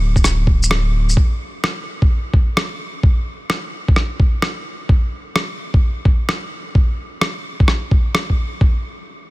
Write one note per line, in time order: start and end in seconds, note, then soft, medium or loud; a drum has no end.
0.00 1.15 D1 medium
0.16 kick loud
0.16 shaker soft
0.24 cross-stick medium
0.24 shaker medium
0.47 kick medium
0.63 shaker medium
0.71 cross-stick loud
1.09 shaker soft
1.17 kick loud
1.64 cross-stick loud
2.02 kick loud
2.34 kick medium
2.57 cross-stick medium
3.03 kick loud
3.50 cross-stick medium
3.88 kick medium
3.96 cross-stick medium
4.20 kick medium
4.42 cross-stick medium
4.89 kick loud
5.36 cross-stick medium
5.74 kick medium
6.05 kick medium
6.29 cross-stick medium
6.75 kick loud
7.21 cross-stick medium
7.60 kick loud
7.68 cross-stick medium
7.91 kick medium
8.15 cross-stick medium
8.30 kick soft
8.61 kick loud